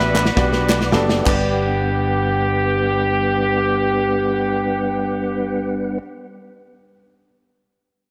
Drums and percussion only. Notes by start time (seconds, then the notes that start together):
0.15 snare, clap
0.26 snare
0.37 kick, snare
0.53 snare
0.69 snare, clap
0.81 snare
0.92 snare
1.09 snare
1.26 kick, clap, crash